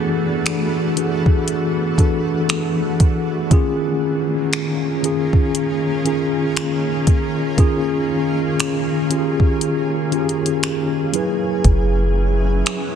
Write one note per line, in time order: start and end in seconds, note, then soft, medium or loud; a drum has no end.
0.00 0.75 E3 loud
0.00 3.47 E3 medium
0.00 3.47 A3 medium
0.00 3.47 B3 medium
0.00 0.76 D4 medium
0.00 3.47 D4 medium
0.00 0.76 F#4 medium
0.00 3.47 F#4 medium
0.00 0.99 G#4 medium
0.00 0.80 A4 loud
0.46 finger snap loud
0.46 closed hi-hat medium
0.96 1.84 E3 medium
0.96 1.84 D4 medium
0.96 1.85 F#4 medium
0.96 1.05 G#4 medium
0.96 closed hi-hat medium
1.06 1.89 A4 medium
1.26 kick medium
1.48 closed hi-hat medium
1.97 3.29 E3 medium
1.97 3.30 D4 medium
1.97 3.30 F#4 medium
1.97 3.31 A4 medium
1.97 kick medium
1.97 closed hi-hat medium
2.49 finger snap loud
2.49 closed hi-hat medium
3.00 kick medium
3.00 closed hi-hat medium
3.50 4.82 D#3 loud
3.50 11.09 D#3 medium
3.50 11.10 A#3 medium
3.50 11.10 C#4 medium
3.50 4.83 C#4 loud
3.50 11.10 F4 medium
3.50 4.83 F4 medium
3.50 12.95 G#4 medium
3.50 4.84 G#4 loud
3.50 kick loud
3.50 closed hi-hat medium
4.53 finger snap loud
4.53 closed hi-hat medium
5.02 5.91 D#3 medium
5.02 5.91 C#4 medium
5.02 5.92 F4 medium
5.02 5.92 G#4 medium
5.02 closed hi-hat medium
5.33 kick medium
5.55 closed hi-hat medium
6.04 7.36 D#3 medium
6.04 7.37 C#4 medium
6.04 7.37 F4 medium
6.04 7.38 G#4 medium
6.04 closed hi-hat medium
6.57 finger snap loud
6.57 closed hi-hat medium
7.07 kick medium
7.07 closed hi-hat medium
7.57 8.89 D#3 loud
7.57 8.89 C#4 loud
7.57 8.90 F4 medium
7.57 8.90 G#4 loud
7.57 kick loud
7.57 closed hi-hat medium
8.60 finger snap loud
8.60 closed hi-hat medium
9.09 9.97 D#3 medium
9.09 9.98 C#4 medium
9.09 9.98 F4 medium
9.09 9.19 G4 medium
9.09 closed hi-hat medium
9.19 10.02 G#4 medium
9.40 kick medium
9.61 closed hi-hat medium
10.11 11.13 D#3 medium
10.11 11.14 C#4 medium
10.11 11.14 F4 medium
10.11 10.21 G4 medium
10.11 closed hi-hat soft
10.21 11.13 G#4 medium
10.29 closed hi-hat soft
10.46 closed hi-hat medium
10.63 finger snap loud
10.63 closed hi-hat medium
11.12 12.86 F#3 medium
11.12 12.95 F#3 medium
11.12 12.95 B3 medium
11.12 12.95 C#4 medium
11.12 12.87 E4 medium
11.12 12.95 E4 medium
11.12 12.87 G#4 medium
11.12 12.88 B4 medium
11.12 closed hi-hat medium
11.64 12.62 F#1 loud
11.64 kick loud
11.64 closed hi-hat medium
12.66 finger snap loud
12.66 closed hi-hat medium